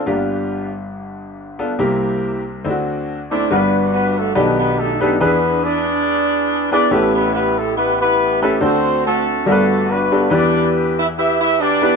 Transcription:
0.06 1.74 G1 medium
0.06 1.74 G2 medium
0.06 0.12 A#3 medium
0.06 0.68 D4 medium
0.06 0.68 F4 medium
0.06 0.68 G4 medium
0.12 0.70 B3 medium
1.59 1.72 B3 medium
1.59 1.72 D4 medium
1.59 1.72 F4 medium
1.59 1.73 A4 medium
1.79 2.61 C2 medium
1.79 2.60 C3 medium
1.79 2.40 A#3 medium
1.79 2.40 C4 medium
1.79 2.40 E4 medium
1.79 2.40 G4 medium
2.65 3.46 D2 medium
2.65 3.46 D3 medium
2.65 3.17 A3 medium
2.65 3.17 C4 medium
2.65 3.17 D4 medium
2.65 2.70 E4 medium
2.70 3.20 F#4 medium
3.31 3.44 A3 medium
3.31 3.44 C4 medium
3.31 3.49 D4 medium
3.31 3.44 D4 medium
3.31 3.45 E4 medium
3.31 3.49 D5 medium
3.50 4.32 G1 medium
3.50 4.32 G2 medium
3.50 4.11 G3 medium
3.50 3.90 B3 medium
3.50 4.11 B3 medium
3.50 4.11 D4 medium
3.50 4.32 D4 medium
3.50 4.12 F#4 medium
3.50 4.32 F#4 medium
3.50 3.56 A#4 medium
3.50 3.90 B4 medium
3.56 4.14 B4 medium
3.93 4.15 B3 medium
3.93 4.15 B4 medium
4.17 4.36 A3 medium
4.17 4.36 A4 medium
4.35 5.17 B1 medium
4.35 5.17 B2 medium
4.35 4.88 D#3 medium
4.35 4.57 B3 medium
4.35 4.88 B3 medium
4.35 5.17 D4 medium
4.35 5.17 D#4 medium
4.35 4.88 G4 medium
4.35 4.88 A4 medium
4.35 4.57 B4 medium
4.35 4.88 D5 medium
4.59 4.77 B3 medium
4.59 4.77 B4 medium
4.78 5.00 A3 medium
4.78 5.00 A4 medium
5.00 5.19 A3 medium
5.00 5.14 B3 medium
5.00 5.14 D4 medium
5.00 5.14 D#4 medium
5.00 5.15 G4 medium
5.00 5.19 A4 medium
5.00 5.15 B4 medium
5.20 6.87 E2 medium
5.20 6.87 E3 medium
5.20 5.82 B3 medium
5.20 5.63 B3 medium
5.20 5.82 D4 medium
5.20 5.64 D4 medium
5.20 5.82 E4 medium
5.20 5.82 G#4 medium
5.20 5.63 G#4 medium
5.20 5.63 B4 medium
5.20 5.82 B4 medium
5.64 6.71 D4 medium
5.64 6.69 G#4 medium
5.64 6.69 B4 medium
5.64 6.71 D5 loud
6.71 6.85 B3 medium
6.71 6.85 D4 medium
6.71 6.90 D4 medium
6.71 6.85 E4 medium
6.71 6.85 G#4 medium
6.71 6.86 B4 medium
6.71 6.90 D5 medium
6.91 8.58 A1 medium
6.91 8.58 A2 medium
6.91 7.52 A3 medium
6.91 7.14 B3 medium
6.91 7.52 C#4 medium
6.91 7.52 E4 medium
6.91 7.73 E4 medium
6.91 7.73 G4 medium
6.91 7.52 G4 medium
6.91 7.52 A4 medium
6.91 7.14 B4 loud
7.15 7.32 B3 medium
7.15 7.32 B4 medium
7.33 7.56 B3 medium
7.33 7.56 B4 medium
7.57 7.77 A3 medium
7.57 7.77 A4 medium
7.76 7.98 B3 medium
7.76 8.00 E4 medium
7.76 8.00 G4 medium
7.76 7.98 B4 medium
8.01 8.40 B3 loud
8.01 8.58 E4 medium
8.01 8.58 G4 medium
8.01 8.40 B4 loud
8.42 8.56 A3 medium
8.42 8.60 A3 medium
8.42 8.56 C#4 medium
8.42 8.56 E4 medium
8.42 8.56 G4 medium
8.42 8.60 A4 medium
8.42 8.56 B4 medium
8.61 9.43 D2 medium
8.61 9.42 D3 medium
8.61 9.22 A3 medium
8.61 9.22 C4 medium
8.61 9.04 C4 medium
8.61 9.22 D4 medium
8.61 9.22 F#4 medium
8.61 9.05 F#4 medium
8.61 9.22 A4 medium
8.61 9.04 A4 medium
8.61 9.04 C5 loud
9.06 9.45 A3 medium
9.06 9.45 C4 medium
9.06 9.45 F#4 medium
9.06 9.45 A4 loud
9.46 10.28 G1 medium
9.46 10.28 G2 medium
9.46 9.99 G3 medium
9.46 9.86 A3 medium
9.46 9.98 B3 medium
9.46 9.99 D4 medium
9.46 9.89 D4 medium
9.46 9.98 F#4 medium
9.46 9.89 F#4 medium
9.46 9.86 A4 loud
9.46 9.52 A#4 medium
9.52 10.01 B4 medium
9.90 10.32 B3 medium
9.90 10.29 D4 medium
9.90 10.29 F#4 medium
9.90 10.32 B4 loud
10.12 10.26 B3 medium
10.12 10.26 D4 medium
10.12 10.26 F#4 medium
10.12 10.26 G4 medium
10.12 10.26 A4 medium
10.30 11.96 E2 medium
10.30 11.96 E3 medium
10.30 10.92 B3 medium
10.30 10.92 D4 medium
10.30 10.70 D4 loud
10.30 10.92 E4 medium
10.30 10.92 G4 medium
10.30 11.13 G4 medium
10.30 10.92 B4 medium
10.30 11.14 B4 medium
10.30 10.70 D5 loud
10.99 11.07 E4 medium
10.99 11.07 E5 loud
11.17 11.39 E4 medium
11.17 11.59 G4 medium
11.17 11.59 B4 medium
11.17 11.39 E5 loud
11.41 11.59 E4 loud
11.41 11.59 E5 loud
11.60 11.96 D4 loud
11.60 11.96 G4 medium
11.60 11.96 B4 medium
11.60 11.96 D5 loud
11.82 11.96 B3 medium
11.82 11.96 D4 medium
11.82 11.96 E4 medium
11.82 11.96 G4 medium
11.82 11.96 B4 medium

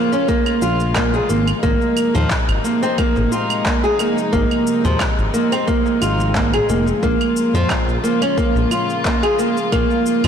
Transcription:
0.00 1.59 C#3 medium
0.00 1.59 F3 medium
0.00 10.28 G#3 medium
0.00 0.12 A#3 medium
0.00 1.59 A#3 medium
0.00 1.59 F4 medium
0.12 0.28 C#4 medium
0.12 darbuka ka medium
0.12 darbuka tek soft
0.12 cabasa soft
0.28 0.61 A#3 medium
0.28 kick medium
0.28 cabasa soft
0.46 darbuka tek medium
0.46 cabasa soft
0.46 claves medium
0.62 1.21 A#1 medium
0.62 0.94 F4 medium
0.62 cabasa medium
0.80 cabasa soft
0.95 1.13 A#3 medium
0.95 kick medium
0.95 clap loud
0.95 cabasa soft
0.95 claves medium
1.14 1.28 G#4 medium
1.14 darbuka tek medium
1.14 cabasa soft
1.29 1.53 G#1 medium
1.29 1.47 A#3 medium
1.29 cabasa medium
1.47 cabasa soft
1.47 claves medium
1.63 1.76 G#1 loud
1.63 6.99 C3 medium
1.63 10.28 F3 medium
1.63 2.13 A#3 loud
1.63 4.30 A#3 medium
1.63 6.99 D#4 medium
1.63 kick loud
1.63 cabasa soft
1.82 cabasa soft
1.97 cabasa medium
1.97 claves medium
2.15 2.26 D#2 loud
2.15 2.30 F3 loud
2.15 darbuka dum medium
2.15 cabasa soft
2.30 kick loud
2.30 clap loud
2.30 cabasa soft
2.49 2.59 G#1 loud
2.49 cabasa soft
2.49 claves medium
2.64 2.82 A#3 medium
2.64 cabasa medium
2.83 2.97 C4 medium
2.83 darbuka ka medium
2.83 cabasa soft
2.98 3.30 A#3 medium
2.98 kick loud
2.98 cabasa soft
2.98 claves medium
3.16 3.27 G#1 medium
3.16 darbuka tek medium
3.16 darbuka dum medium
3.16 cabasa soft
3.32 3.64 F4 medium
3.32 darbuka ka soft
3.32 cabasa medium
3.50 cabasa soft
3.50 claves medium
3.65 3.83 A#3 medium
3.65 kick medium
3.65 clap loud
3.65 cabasa soft
3.84 3.98 G#4 medium
3.84 cabasa soft
3.99 4.17 A#3 medium
3.99 darbuka tek medium
3.99 cabasa medium
3.99 claves medium
4.18 cabasa soft
4.33 4.45 G#1 loud
4.33 4.83 A#3 loud
4.33 7.00 C4 medium
4.33 kick loud
4.33 cabasa soft
4.51 cabasa soft
4.51 claves medium
4.67 cabasa medium
4.85 4.95 D#2 medium
4.85 5.00 F3 medium
4.85 darbuka ka soft
4.85 darbuka dum medium
4.85 cabasa soft
5.00 kick loud
5.00 clap loud
5.00 cabasa soft
5.00 claves medium
5.19 5.29 G#1 loud
5.19 cabasa soft
5.34 5.51 A#3 medium
5.34 cabasa medium
5.52 5.67 C4 medium
5.52 darbuka ka medium
5.52 darbuka tek soft
5.52 cabasa soft
5.52 claves medium
5.67 6.00 A#3 medium
5.67 kick medium
5.67 cabasa soft
5.86 darbuka tek medium
5.86 cabasa soft
6.02 6.61 G#1 medium
6.02 6.34 F4 medium
6.02 cabasa medium
6.02 claves medium
6.20 cabasa soft
6.35 6.53 A#3 medium
6.35 kick loud
6.35 clap medium
6.35 cabasa soft
6.54 6.68 G#4 medium
6.54 darbuka tek medium
6.54 darbuka dum medium
6.54 cabasa soft
6.54 claves medium
6.69 6.92 F1 medium
6.69 6.86 A#3 medium
6.69 cabasa medium
6.87 darbuka tek medium
6.87 cabasa soft
7.02 7.15 A#1 loud
7.02 10.28 C#3 medium
7.02 10.28 A#3 medium
7.02 7.53 A#3 loud
7.02 10.28 F4 medium
7.02 kick loud
7.02 cabasa soft
7.21 cabasa soft
7.21 claves medium
7.37 cabasa medium
7.54 7.65 F2 medium
7.54 7.69 F3 medium
7.54 darbuka dum medium
7.54 cabasa soft
7.70 kick medium
7.70 clap medium
7.70 cabasa soft
7.70 claves medium
7.88 7.99 A#1 loud
7.88 cabasa soft
8.04 8.21 A#3 medium
8.04 cabasa medium
8.22 8.37 C#4 medium
8.22 darbuka ka medium
8.22 cabasa soft
8.22 claves medium
8.37 8.70 A#3 medium
8.37 kick medium
8.37 cabasa soft
8.55 8.66 A#1 medium
8.55 darbuka tek medium
8.55 darbuka dum medium
8.55 cabasa soft
8.71 9.04 F4 medium
8.71 darbuka ka soft
8.71 cabasa medium
8.71 claves medium
8.90 cabasa soft
9.05 9.22 A#3 medium
9.05 kick medium
9.05 clap medium
9.05 cabasa soft
9.23 9.37 G#4 medium
9.23 cabasa soft
9.23 claves medium
9.39 9.56 A#3 medium
9.39 darbuka tek medium
9.39 cabasa medium
9.57 cabasa soft
9.72 9.85 A#1 loud
9.72 10.22 A#3 loud
9.72 kick loud
9.72 cabasa soft
9.72 claves medium
9.91 cabasa soft
10.06 cabasa medium
10.24 10.28 F2 medium
10.24 10.28 F3 medium
10.24 darbuka dum medium
10.24 cabasa soft
10.24 claves medium

